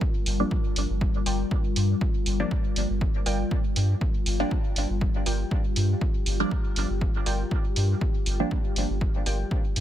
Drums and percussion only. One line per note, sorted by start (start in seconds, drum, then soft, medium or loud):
0.01 kick loud
0.26 open hi-hat medium
0.51 kick loud
0.76 open hi-hat medium
1.01 kick loud
1.26 open hi-hat medium
1.51 kick loud
1.76 open hi-hat medium
2.01 kick loud
2.26 open hi-hat medium
2.51 kick loud
2.76 open hi-hat medium
3.01 kick loud
3.26 open hi-hat medium
3.51 kick loud
3.76 open hi-hat medium
4.01 kick loud
4.26 open hi-hat medium
4.51 kick loud
4.76 open hi-hat medium
5.01 kick loud
5.26 open hi-hat medium
5.51 kick loud
5.76 open hi-hat medium
6.01 kick loud
6.26 open hi-hat medium
6.51 kick loud
6.76 open hi-hat medium
7.01 kick loud
7.26 open hi-hat medium
7.51 kick loud
7.76 open hi-hat medium
8.01 kick loud
8.26 open hi-hat medium
8.51 kick loud
8.76 open hi-hat medium
9.01 kick loud
9.26 open hi-hat medium
9.51 kick loud
9.76 open hi-hat medium